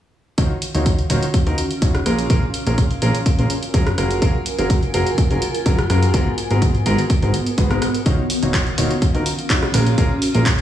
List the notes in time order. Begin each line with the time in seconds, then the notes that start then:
0.38 D#1 D#3 C#4 D#4 F4 F#4 C#5, kick, closed hi-hat
0.62 closed hi-hat
0.74 D#1 D#3 D#4 F4 F#4 C#5, closed hi-hat
0.86 kick, closed hi-hat
0.99 closed hi-hat
1.10 D#1 D#3 D#4 F4 F#4 C#5 F5, closed hi-hat
1.23 closed hi-hat
1.34 kick, closed hi-hat
1.46 D#2 D#3 D#4 F4 F#4 A#4, closed hi-hat
1.58 closed hi-hat
1.71 closed hi-hat
1.82 D#1 D#4 F4 F#4 C#5, kick, closed hi-hat
1.95 cross-stick, closed hi-hat
2.06 A#1 A#2 C#4 F4 G#4 A#4, cross-stick, closed hi-hat
2.19 closed hi-hat
2.30 A#1 A#2 C#4 F4 G#4 A#4, kick, closed hi-hat
2.39 A#4
2.54 closed hi-hat
2.67 A#1 A#2 C#4 F4 G#4 A#4, closed hi-hat
2.78 kick, closed hi-hat
2.91 G#5, closed hi-hat
3.02 A#1 A#2 C#4 F4 G#4 A#4, closed hi-hat
3.15 closed hi-hat
3.26 kick, closed hi-hat
3.38 A#1 A#2 C#4 F4 G#4 A#4, closed hi-hat
3.50 closed hi-hat
3.63 closed hi-hat
3.74 F#1 F#3 C#4 F4 G#4 A#4, kick, closed hi-hat
3.87 cross-stick, closed hi-hat
3.98 F#1 F#3 F4 F#4 G#4 A#4, cross-stick, closed hi-hat
4.11 closed hi-hat
4.22 F#1 F#3 F4 F#4 G#4 A#4, kick, closed hi-hat
4.46 closed hi-hat
4.58 F#1 F#3 F4 F#4 G#4 A#4, closed hi-hat
4.70 kick, closed hi-hat
4.83 closed hi-hat
4.94 F#1 F#3 F4 F#4 G#4 A#4, closed hi-hat
5.07 closed hi-hat
5.18 kick, closed hi-hat
5.31 F#1 F#3 F4 F#4 G#4 A#4, closed hi-hat
5.42 closed hi-hat
5.55 closed hi-hat
5.66 F#1 F#3 F4 F#4 G#4 A#4, kick, closed hi-hat
5.79 cross-stick, closed hi-hat
5.90 F#2 F4 F#4 G#4 A#4, cross-stick, closed hi-hat
6.03 closed hi-hat
6.14 G#1 G#2 B3 F#4 G#4 A#4, kick, closed hi-hat
6.38 closed hi-hat
6.51 G#1 G#2 B3 F#4 G#4 A#4, closed hi-hat
6.62 kick, closed hi-hat
6.75 closed hi-hat
6.86 G#1 G#2 B3 F#4 G#4 A#4, closed hi-hat
6.99 closed hi-hat
7.10 kick, closed hi-hat
7.22 G#1 G#2 B3 F#4 G#4 A#4, closed hi-hat
7.34 closed hi-hat
7.46 closed hi-hat
7.58 G#1 G#2 B3 F#4 G#4 B4, kick, closed hi-hat
7.70 G#1 G#2 B3 F#4 G#4 A#4, cross-stick, closed hi-hat
7.82 cross-stick, closed hi-hat
7.95 closed hi-hat
8.06 D#1 D#3 C#4 D#4 F4 F#4 C#5, kick, closed hi-hat
8.30 open hi-hat
8.42 D#1 D#3 D#4 F4 F#4 C#5 F5, closed hi-hat
8.54 kick, clap, closed hi-hat
8.67 closed hi-hat
8.78 D#1 D#3 D#4 F4 F#4 C#5, open hi-hat
8.91 closed hi-hat
9.02 kick, closed hi-hat
9.14 D#2 D#3 D#4 F4 F#4 A#4, closed hi-hat
9.26 open hi-hat
9.39 closed hi-hat
9.50 D#2 D#4 F4 F#4 C#5, kick, clap, closed hi-hat
9.63 cross-stick, closed hi-hat
9.74 A#1 A#2 C#4 F4 G#4 A#4, cross-stick, open hi-hat
9.87 closed hi-hat
9.98 A#1 A#2 C#4 F4 G#4 A#4, kick, closed hi-hat
10.03 G#5
10.20 A#4, open hi-hat
10.35 A#1 A#2 C#4 F4 G#4 A#4, closed hi-hat
10.46 kick, clap, closed hi-hat